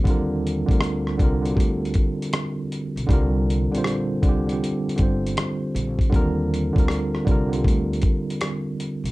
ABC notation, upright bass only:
X:1
M:4/4
L:1/16
Q:"Swing 16ths" 1/4=79
K:Eblyd
V:1 name="Upright bass" clef=bass
E,,3 D,,3 C,,2 D,,2 z4 z =B,,, | C,,3 B,,,3 C,,2 z2 G,,,2 z2 B,,, z | E,,3 D,,3 C,,2 D,,2 z4 z =B,,, |]